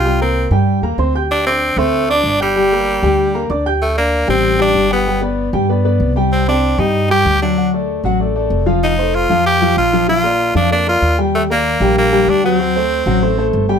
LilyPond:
<<
  \new Staff \with { instrumentName = "Grand piano" } { \time 4/4 \key d \phrygian \tempo 4 = 191 <g g' g''>8 <bes bes' bes''>4 <g g' g''>4 <bes bes' bes''>8 <c' c'' c'''>8 <g' g'' g'''>8~ | <g' g'' g'''>8 <d' d'' d'''>4 <c' c'' c'''>4 <d' d'' d'''>4 <g' g'' g'''>8 | <g g' g''>8 <bes bes' bes''>4 <g g' g''>4 <bes bes' bes''>8 <d' d'' d'''>8 <g' g'' g'''>8 | r8 <d' d''>4 <g g' g''>4 <g g' g''>4 <g g' g''>8 |
<g g' g''>8 <b b' d''>4 <g g' g''>8 <b b' d''>8 <b b' d''>4 <g g' g''>8~ | <g g' g''>8 <c' c'' g''>4 <g g' g''>4 <g g' g''>4 <fis fis' fis''>8 | <fis fis' fis''>8 <a a' d''>4 <fis fis' fis''>8 <a a' d''>8 <a a' d''>4 <f f' f''>8~ | <f f' f''>8 <a a' c''>4 <f f' f''>4 <f f' f''>4 <f f' f''>8 |
<f f' f''>8 <bes bes' d''>4 <f f' f''>8 <bes bes' d''>8 <bes bes' d''>4 <g g' g''>8~ | <g g' g''>8 <bes bes' d''>4 <g g' g''>4 <g g' g''>4 <fis fis' fis''>8 | <fis fis' fis''>8 <a a' c''>4 <fis fis' fis''>8 <a a' c''>8 <a a' c''>4 <g g' g''>8 | }
  \new Staff \with { instrumentName = "Tenor saxophone" } { \time 4/4 \key d \phrygian f'8 c'4 r2 r8 | d'8 c'4 a4 d'4 g8~ | g2. r4 | a8 bes4 c'4 d'4 b8~ |
b8 r2. r8 | c'8 d'4 ees'4 g'4 d'8~ | d'8 r2. r8 | ees'4 f'4 g'4 f'4 |
f'4. d'8 d'8 f'4 r8 | a8 bes4. bes4 d'8 c'8~ | c'2. r4 | }
  \new Staff \with { instrumentName = "Upright bass" } { \clef bass \time 4/4 \key d \phrygian c,4. g,4 ees,8 d,4~ | d,4. d,4. g,,4~ | g,,4. d,4. d,4~ | d,4. a,,4. g,,4~ |
g,,4. g,4. c,4~ | c,4. g,4. d,4~ | d,4. a,,4. f,,4~ | f,,4. f,4. bes,,4~ |
bes,,4. f,4. ees,4~ | ees,4. bes,,4. d,4~ | d,4. a,,4. g,,4 | }
>>